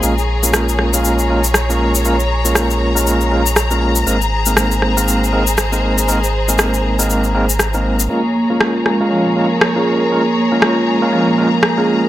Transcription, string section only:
Already playing: G#4
0.04 C#5 A#5
4.07 G#4 C5
8.10 G#4 C#5 A#5

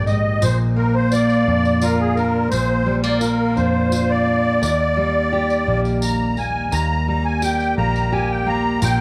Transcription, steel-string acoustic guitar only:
Already playing: D#3 G3 A#3 G4
0.06 G#2
0.42 A#2
0.76 A#3
1.12 F4
1.47 D4
1.82 F4
2.17 D4
2.51 A#2
2.86 G3
3.04 A#3
3.21 F4
3.56 D4
3.92 F4
4.27 D4
4.62 D#2
4.97 G3
5.33 G4
5.67 A#3
6.38 A#3
6.71 D#2
7.08 G3
7.42 G4
7.78 A#3
8.12 G4
8.46 A#3
8.82 A#2

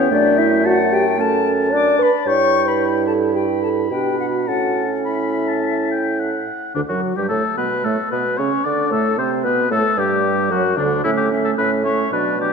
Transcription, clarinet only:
Already playing: B3
0.11 A3
1.18 C#4
1.73 D4
2.28 E4
3.92 D4
4.47 C#4
6.76 D3
6.88 F#3
7.15 G3
7.29 A3
7.57 B3
7.84 A3
8.11 B3
8.38 C#4
8.64 D4
8.91 A3
9.18 C4
9.45 B3
9.70 A3
9.97 G3
10.51 F#3
10.77 D3
11.05 C#4
11.32 C#4
11.58 C#4
11.85 C#4
12.12 D4
12.40 D4

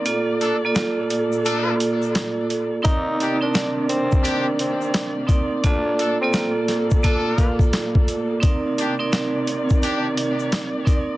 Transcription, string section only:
Already playing: A#3 D5
0.07 A#2 A4
2.85 C3 D#3 A#3 D5
5.64 A#2 A4
8.44 C3 D#3 D5

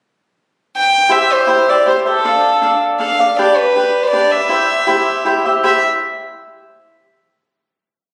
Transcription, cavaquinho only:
1.09 E4 G4 C5 E5
1.47 E4 G4 C5 E5
1.68 G4 C5 E5
1.85 E4 G4 C5 E5
2.06 G4 C5 E5
2.25 D4 A4 D5 F5
2.62 D4 A4 D5 F5
3.00 D4 A4 D5 F5
3.19 A4 D5 F5
3.38 D4 G4 B4 D5
3.76 D4 G4 B4 D5
4.13 D4 G4 B4 D5
4.31 G4 B4 D5
4.49 E4 G4 C5 E5
4.87 E4 G4 C5 E5
5.25 E4 G4 C5 E5
5.45 G4 C5 E5
5.63 E4 G4 C5 E5

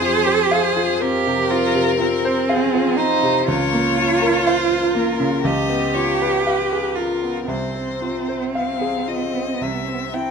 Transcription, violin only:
Already playing: C5
0.52 C5
1.01 A#4
2.48 G#4
2.97 C5
3.49 C#5
4.46 C5
4.96 A#4
5.45 D#5
5.94 C#5
6.45 B4
6.96 A#4
7.48 C5
8.54 F5
9.07 D#5
9.62 E5
10.14 G5

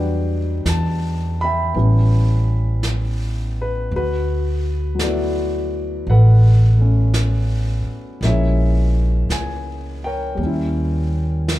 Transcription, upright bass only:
Already playing: E2
0.65 E2
1.74 A1
3.91 D2
6.07 A1
7.85 muted upright bass stroke
8.21 A#1
9.29 C#2
10.37 D#2

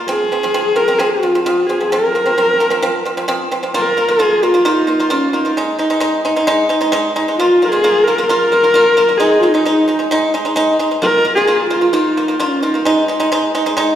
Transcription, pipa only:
0.08 F3 C4
0.32 F3 C4
0.43 F3 C4
0.54 F3 C4
0.76 F3 C4
0.88 F3 C4
0.99 F3 C4
1.23 F3 C4
1.35 F3 C4
1.46 F3 C4
1.69 F3 C4
1.80 F3 C4
1.92 F3 C4
2.15 F3 C4
2.26 F3 C4
2.38 F3 C4
2.60 F3 C4
2.70 F3 C4
2.82 F3 C4
3.05 F3 C4
3.17 F3 C4
3.28 F3 C4
3.51 F3 C4
3.63 F3 C4
3.74 A#3 F4
3.97 A#3 F4
4.08 A#3 F4
4.19 A#3 F4
4.43 A#3 F4
4.54 A#3 F4
4.65 A#3 F4
4.87 A#3 F4
5.00 A#3 F4
5.10 A#3 F4
5.33 A#3 F4
5.45 A#3 F4
5.57 G#3 D#4
5.79 G#3 D#4
5.90 G#3 D#4
6.00 G#3 D#4
6.25 G#3 D#4
6.36 G#3 D#4
6.47 G#3 D#4
6.69 G#3 D#4
6.81 G#3 D#4
6.92 G#3 D#4
7.16 G#3 D#4
7.28 G#3 D#4
7.39 A#3 F4
7.62 A#3 F4
7.72 A#3 F4
7.84 A#3 F4
8.07 A#3 F4
8.18 A#3 F4
8.29 A#3 F4
8.52 A#3 F4
8.64 A#3 F4
8.74 A#3 F4
8.97 A#3 F4
9.09 A#3 F4
9.20 G#3 D#4
9.43 G#3 D#4
9.54 G#3 D#4
9.65 G#3 D#4
9.88 G#3 D#4
9.99 G#3 D#4
10.11 G#3 D#4
10.34 G#3 D#4
10.45 G#3 D#4
10.56 G#3 D#4
10.79 G#3 D#4
10.91 G#3 D#4
11.02 A#3 F4
11.25 A#3 F4
11.37 A#3 F4
11.47 A#3 F4
11.70 A#3 F4
11.81 A#3 F4
11.93 A#3 F4
12.17 A#3 F4
12.28 A#3 F4
12.40 A#3 F4
12.63 A#3 F4
12.74 A#3 F4
12.85 G#3 D#4
13.08 G#3 D#4
13.20 G#3 D#4
13.32 G#3 D#4
13.55 G#3 D#4
13.66 G#3 D#4
13.77 G#3 D#4

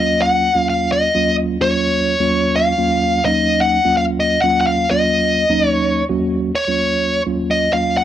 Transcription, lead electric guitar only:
Already playing: D#5
0.22 F#5
0.57 F5
0.69 F5
0.92 D#5
1.62 C#5
2.56 F5
3.25 D#5
3.61 F#5
3.97 F5
4.20 D#5
4.42 F#5
4.61 F#5
4.67 F5
4.91 D#5
5.69 C#5
6.55 C#5
7.51 D#5
7.73 F5
7.97 F#5

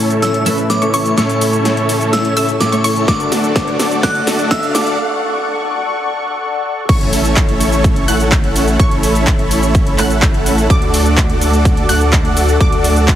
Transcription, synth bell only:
0.22 E6
0.70 D6
0.94 C#6
1.17 C#6
2.13 E6
2.60 D6
2.84 C#6
3.08 D6
4.03 F#6
4.51 E6
4.75 D6

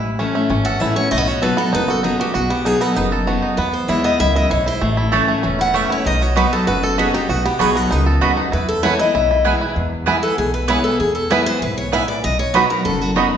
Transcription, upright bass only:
Already playing: A1
0.50 G#1
0.80 A1
1.12 B1
1.74 F#1
2.35 B1
2.97 F#1
3.58 E2
3.89 D#2
4.20 C#2
4.51 B1
4.82 A1
5.44 E1
6.06 B1
6.67 F#1
7.29 B1
7.60 B1
7.92 C#2
8.22 D#2
8.53 E2
9.15 B1
9.76 E2
10.38 B1
11.00 E2
11.62 B1
12.25 B1
12.85 F#1

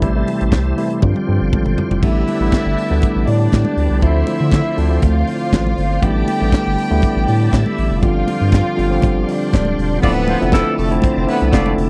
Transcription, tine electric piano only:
0.01 C3 E3 G3 A3 E4
0.14 C3 E3 G3 A3 E4
0.77 C3 E3 G3 A3 E4
1.02 D3 F3 G3 C4 F4
1.26 D3 F3 G3 C4 F4
1.53 F4 A4
1.78 E4 G4
2.02 D3 G3 A3 B3 E4
2.40 D3 G3 A3 B3 E4
2.90 D3 G3 A3 B3 E4
4.02 D3 F3 A3 C4 E4
4.77 D3 F3 A3 C4 D4
4.90 D3 F3 A3 C4 F4
6.02 D3 G3 A3 B3 E4
6.40 D3 G3 A3 B3 G4
6.90 D3 G3 A3 B3 E4
8.01 D3 F3 G3 C4 F4
8.75 D3 F3 G3 C4 F4
8.90 D3 F3 G3 C4 G4
10.02 D3 F3 A3 C4 E4
10.40 D3 F3 A3 C4 E4
10.90 D3 F3 A3 C4 E4
11.27 D3 F3 A3 C4 E4
11.66 D3 F3 A3 C4 E4

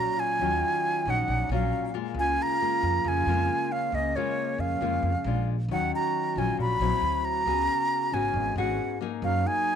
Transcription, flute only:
Already playing: A#5
0.20 G#5
1.10 F#5
1.54 F5
2.19 G#5
2.42 A#5
3.08 G#5
3.72 F5
3.95 D#5
4.16 C#5
4.60 F5
5.72 F#5
5.95 A#5
6.38 G#5
6.61 B5
7.25 A#5
8.14 G#5
8.58 F#5
9.24 F5
9.47 G#5

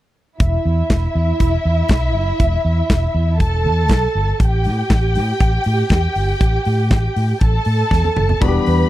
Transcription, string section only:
0.40 E4 E5
3.40 A4 A5
4.41 G4 G5
7.41 A4 A5
8.42 B4 B5

